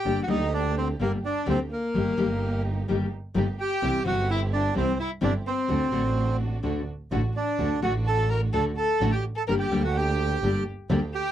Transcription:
<<
  \new Staff \with { instrumentName = "Bandoneon" } { \time 4/4 \key g \minor \tempo 4 = 127 << { g''16. fis''32 ees''8 d''8 c''8 bes'8 d''8 c''8 bes'8~ | bes'4. r2 g''8~ | g''8 fis''8 e''8 d''8 c''8 e''8 d''8 c''8~ | c''4. r2 d''8~ |
d''8 fis''8 a''8 bes''8 a''8 a''8. g''8 a''16 | bes''16 g''8 fis''16 g''4. r4 g''8 | } \\ { g'8 ees'8 d'8 c'8 bes8 d'8 c'8 bes8~ | bes4. r2 g'8~ | g'8 fis'8 e'8 d'8 c'8 e'8 d'8 c'8~ | c'4. r2 d'8~ |
d'8 fis'8 a'8 bes'8 a'8 a'8. g'8 a'16 | bes'16 g'8 fis'16 g'4. r4 g'8 | } >> }
  \new Staff \with { instrumentName = "Violin" } { \time 4/4 \key g \minor g'16. fis'32 ees'8 d'8 c'8 bes8 d'8 c'8 bes8~ | bes4. r2 g'8~ | g'8 fis'8 e'8 d'8 c'8 e'8 d'8 c'8~ | c'4. r2 d'8~ |
d'8 fis'8 a'8 bes'8 a'8 a'8. g'8 a'16 | bes'16 g'8 fis'16 g'4. r4 g'8 | }
  \new Staff \with { instrumentName = "String section" } { \time 4/4 \key g \minor <bes d' g'>8 <bes d' g'>4. <bes d' g'>8 r8 <bes d' g'>8 r8 | <bes ees' g'>8 <bes ees' g'>4. <bes ees' g'>8 r8 <bes ees' g'>8 r8 | <c' e' g'>8 <c' e' g'>4. <c' e' g'>8 r8 <c' e' g'>8 r8 | <a d' fis'>8 <a d' fis'>4. <a d' fis'>8 r8 <a d' fis'>8 r8 |
<a d' fis'>8 <a d' fis'>4. <a d' fis'>8 r8 <a d' fis'>8 r8 | <bes d' g'>8 <bes d' g'>4. <bes d' g'>8 r8 <bes d' g'>8 r8 | }
  \new Staff \with { instrumentName = "Nylon-string guitar" } { \time 4/4 \key g \minor <d g bes d' g'>8 <d g bes d' g'>8 r4 <d g bes d' g'>8 r8 <d g bes d' g'>8 r8 | <ees g bes ees' g'>8 <ees g bes ees' g'>8 r4 <ees g bes ees' g'>8 r8 <ees g bes ees' g'>8 r8 | <c e g c' e'>8 <c e g c' e'>8 r4 <c e g c' e'>8 r8 <c e g c' e'>8 r8 | <d a d' fis'>8 <d a d' fis'>8 r4 <d a d' fis'>8 r8 <d a d' fis'>8 r8 |
<d a d' fis'>8 <d a d' fis'>8 r4 <d a d' fis'>8 r8 <d a d' fis'>8 r8 | <d g bes d' g'>8 <d g bes d' g'>8 r4 <d g bes d' g'>8 r8 <d g bes d' g'>8 r8 | }
  \new Staff \with { instrumentName = "Double bass" } { \clef bass \time 4/4 \key g \minor g,,8 d,4. g,,8 r8 d,8 r8 | g,,8 g,,4. g,,8 r8 g,,8 r8 | c,8 g,,4. c,8 r8 g,,8 r8 | d,8 a,,4. d,8 r8 a,,8 r8 |
d,8 a,,4. d,8 r8 a,,8 r8 | g,,8 d,4. g,,8 r8 d,8 r8 | }
>>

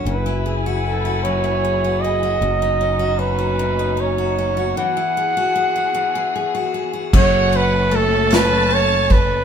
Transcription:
<<
  \new Staff \with { instrumentName = "Violin section" } { \time 6/8 \key fis \minor \tempo 4. = 51 r2. | r2. | r2. | fis''4 a''2 | }
  \new Staff \with { instrumentName = "Flugelhorn" } { \time 6/8 \key fis \minor b'8 r8 a'8 cis''4 dis''8~ | dis''4 b'4 cis''4 | fis''2~ fis''8 r8 | cis''8 b'8 a'8 b'8 cis''8 b'8 | }
  \new Staff \with { instrumentName = "Steel-string acoustic guitar" } { \time 6/8 \key fis \minor fis,16 e'16 gis'16 fis'8 fis'16 fis,16 e'16 gis'16 fis'16 gis'16 fis'16 | fis,16 dis'16 cis'16 fis'16 cis'16 fis'16 fis,16 dis'16 cis'16 fis'16 cis'16 fis'16 | e16 e'16 gis'16 fis'16 gis'16 fis'16 e16 e'16 gis'16 fis'16 gis'16 fis'16 | fis,8 cis'8 a8 cis'4 cis'8 | }
  \new Staff \with { instrumentName = "String section" } { \time 6/8 \key fis \minor << { <fis b' gis''>2. | <cis' dis'>2. | <e fis' gis'>2. | <fis fis' a'>2. | } \\ { e'2. | b2.~ | b2. | cis'2. | } >> }
  \new Staff \with { instrumentName = "Fingered electric bass" } { \clef bass \time 6/8 \key fis \minor fis,,2. | fis,,2. | r2. | fis,,2. | }
  \new DrumStaff \with { instrumentName = "Drums" } \drummode { \time 6/8 r4. r4. | r4. r4. | r4. r4. | <cymc bd>8 cymr8 cymr8 <cymr sn>8 cymr8 <bd cymr>8 | }
>>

